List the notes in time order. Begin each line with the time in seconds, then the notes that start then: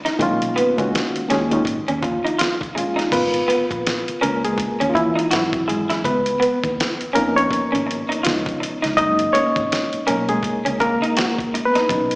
Already playing: A#2 D#3 G#3 C#4 D#4
0.05 D#4, snare, closed hi-hat
0.19 B1 A#2 D#3 G#3 C#4 F4, kick, closed hi-hat
0.42 closed hi-hat
0.56 B3, closed hi-hat
0.77 C#2 A#2 D#3 G#3 C#4 F#4, kick, closed hi-hat
0.95 snare, closed hi-hat
1.16 muted fingered electric bass stroke, closed hi-hat
1.29 D#2 A#2 D#3 G#3 C#4 G#4, snare, closed hi-hat
1.50 A#2 D#3 G#3 C#4 D#4, closed hi-hat
1.65 G#1, kick, closed hi-hat
1.88 D#2 C#4, closed hi-hat
2.02 F3 F4, muted clean electric guitar stroke, kick, closed hi-hat
2.25 D#4, closed hi-hat
2.39 F4, snare, closed hi-hat
2.61 kick, closed hi-hat
2.75 A#2 D#3 G#3 C#4 F4 G#4, muted clean electric guitar stroke, closed hi-hat
2.96 D#4, snare, closed hi-hat
3.12 G#1 B3 F4 A#4 B4, kick, closed hi-hat, crash
3.34 closed hi-hat
3.48 B3, closed hi-hat
3.71 A#1, kick, closed hi-hat
3.87 snare, closed hi-hat
4.08 muted fingered electric bass stroke, closed hi-hat
4.21 C#2 A#3 C#4 A#4, closed hi-hat
4.44 G#3 G#4, closed hi-hat
4.58 muted fingered electric bass stroke, kick, closed hi-hat
4.80 D#2 C#4, closed hi-hat
4.90 F4
4.94 E3 E4, muted clean electric guitar stroke, kick, closed hi-hat
5.16 D#4, closed hi-hat
5.31 G#1 F#3 C4 E4 F#4, snare, closed hi-hat
5.53 kick, closed hi-hat
5.68 G#3 G#4, muted clean electric guitar stroke, closed hi-hat
5.90 E4, snare, closed hi-hat
6.04 C#2 B3 B4, kick, closed hi-hat
6.26 closed hi-hat
6.40 B3, closed hi-hat
6.64 D#2, kick, closed hi-hat
6.80 snare, closed hi-hat
7.01 muted fingered electric bass stroke, closed hi-hat
7.13 F2 F3 A#3 B3 C#4 D#4 A#4, closed hi-hat
7.36 C#4 C#5, closed hi-hat
7.51 kick, closed hi-hat
7.72 G#1 C#4, closed hi-hat
7.87 muted clean electric guitar stroke
7.91 closed hi-hat
8.09 D#4, closed hi-hat
8.23 C#2 F3 B3 D#4 F4, snare, closed hi-hat
8.46 kick, closed hi-hat
8.60 muted clean electric guitar stroke, closed hi-hat
8.82 C#2 D#4, snare, closed hi-hat
8.97 F#1 G#3 A#3 D#4 D#5, kick, closed hi-hat
9.19 closed hi-hat
9.33 A#3 C#4 C#5, closed hi-hat
9.56 G#1, kick, closed hi-hat
9.72 snare, closed hi-hat
9.93 muted fingered electric bass stroke, closed hi-hat
10.07 B1 A#3 C#4 A#4, closed hi-hat
10.29 G#3 G#4, closed hi-hat
10.43 muted fingered electric bass stroke, kick, closed hi-hat
10.65 C#2 C#4, closed hi-hat
10.80 A#3 A#4, muted clean electric guitar stroke, kick, closed hi-hat
11.02 D#4, closed hi-hat
11.17 F#4, snare, closed hi-hat
11.38 kick, closed hi-hat
11.54 muted clean electric guitar stroke, closed hi-hat
11.65 B3 B4
11.75 D#4, snare, closed hi-hat
11.89 B1 F#3 C#4 D#4, kick, closed hi-hat
12.11 closed hi-hat